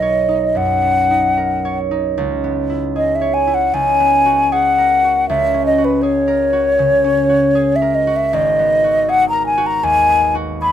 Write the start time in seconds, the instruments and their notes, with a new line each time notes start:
Already playing: harp B1 B3 D#4 A#4 B4, flute D#5
0.02 harp C#5
0.29 harp D#4
0.55 harp F#2, flute F#5
0.82 harp B3
1.11 harp D#4
1.37 harp A#4
1.65 harp C#5
1.91 harp D#4
2.18 harp C#2
2.44 harp B3
2.70 harp E4
2.96 harp G#4, flute D#5
3.15 flute E5
3.21 harp C#5
3.34 flute G#5
3.47 harp E4
3.54 flute F#5
3.74 harp C#2, flute G#5
4.00 harp B3
4.26 harp F#4
4.52 harp G#4, flute F#5
4.78 harp A#4
5.04 harp F#4
5.29 harp C#2, flute E5
5.54 harp C#4
5.66 flute D#5
5.78 harp F#4
5.85 flute B4
6.02 harp G#4, flute C#5
6.28 harp A#4
6.53 harp F#4
6.79 harp C#3
7.04 harp C#4
7.29 harp F#4
7.55 harp G#4
7.76 flute E5
7.82 harp A#4
7.95 flute D#5
8.07 harp F#4
8.16 flute E5
8.33 harp G#1, flute D#5
8.59 harp B3
8.84 harp F#4
9.08 harp G#4, flute F#5
9.29 harp A#4, flute A#5
9.46 flute G#5
9.57 harp F#4
9.66 flute A#5
9.83 harp D#2, flute G#5
10.09 harp B3
10.35 harp F#4
10.62 harp G#4, flute B5